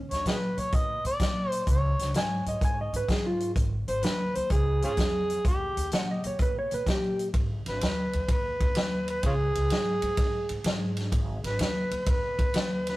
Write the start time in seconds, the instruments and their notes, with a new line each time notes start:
0.11 upright bass D#2, harmonica C#5, snare, closed hi-hat
0.25 upright bass A#2, harmonica F#4 G#4 B4, snare, closed hi-hat
0.57 upright bass A#2, harmonica C#5, closed hi-hat
0.72 upright bass A#2, harmonica D#5, kick, closed hi-hat
1.04 upright bass A#2, harmonica D5, closed hi-hat
1.20 upright bass A#2, kick, snare, closed hi-hat
1.50 harmonica C5, closed hi-hat
1.67 upright bass C#2, harmonica C#5, kick, closed hi-hat
1.99 upright bass C#2, snare, closed hi-hat
2.14 upright bass G#2, electric slide guitar G#5, snare, closed hi-hat
2.46 upright bass G#2, electric slide guitar D#5, closed hi-hat
2.61 upright bass G#2, electric slide guitar G#5, kick, closed hi-hat
2.81 electric slide guitar D#5
2.93 upright bass G#2, electric slide guitar B4, closed hi-hat
3.08 upright bass G#2, electric slide guitar G#4, kick, snare, closed hi-hat
3.26 electric slide guitar F4
3.40 closed hi-hat
3.56 upright bass G#1, kick, closed hi-hat
3.88 upright bass G#1, harmonica C5, closed hi-hat
4.03 upright bass D#2, harmonica B4, snare, closed hi-hat
4.35 upright bass D#2, harmonica C5, closed hi-hat
4.50 upright bass C#2, harmonica G#4, kick, closed hi-hat
4.82 upright bass G#2, harmonica C#4 F4 G#4, closed hi-hat
4.97 upright bass F2, kick, snare, closed hi-hat
5.30 closed hi-hat
5.44 upright bass D#2, harmonica G4, kick, closed hi-hat
5.77 upright bass D#2, closed hi-hat
5.92 upright bass A#2, electric slide guitar F#5, snare, closed hi-hat
6.11 electric slide guitar D#5
6.24 upright bass A#2, electric slide guitar C#5, closed hi-hat
6.39 upright bass A#2, electric slide guitar B4, kick, closed hi-hat
6.59 electric slide guitar C#5
6.71 upright bass A#2, electric slide guitar B4, closed hi-hat
6.86 upright bass A#2, electric slide guitar G4, kick, snare, closed hi-hat
7.19 closed hi-hat
7.34 upright bass G#1, kick, ride
7.66 upright bass G#1, harmonica B4, snare, ride
7.81 upright bass D#2, harmonica B4, snare, ride
8.13 upright bass D#2, ride
8.28 upright bass D#2, harmonica B4, kick, ride
8.60 upright bass D#2, kick, ride
8.75 upright bass D#2, snare, ride
9.08 harmonica B4, ride
9.23 upright bass C#2, harmonica C#4 F4 G#4, kick, ride
9.55 upright bass C#2, ride
9.70 upright bass G#2, snare, ride
10.02 upright bass G#2, ride
10.17 upright bass G#2, kick, snare, ride
10.49 upright bass G#2, ride
10.64 upright bass G#2, snare, ride
10.97 snare, ride
11.12 upright bass G#1, kick, ride
11.44 upright bass G#1, harmonica B4, snare, ride
11.59 upright bass D#2, harmonica B4, snare, ride
11.91 upright bass D#2, ride
12.06 upright bass D#2, harmonica B4, kick, ride
12.39 upright bass D#2, kick, ride
12.54 upright bass D#2, snare, ride
12.87 harmonica B4, snare, ride